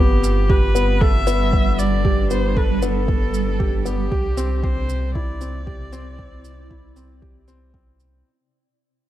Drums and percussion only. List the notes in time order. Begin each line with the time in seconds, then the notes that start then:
0.24 shaker
0.50 kick
0.76 shaker
1.01 kick
1.27 shaker
1.53 kick
1.79 shaker
2.05 kick
2.31 shaker
2.57 kick
2.82 shaker
3.08 kick
3.34 shaker
3.60 kick
3.86 shaker
4.12 kick
4.38 shaker
4.64 kick
4.89 shaker
5.15 kick
5.41 shaker
5.67 kick
5.93 shaker
6.19 kick
6.45 shaker
6.71 kick
6.96 shaker
7.22 kick
7.48 shaker
7.74 kick
8.00 shaker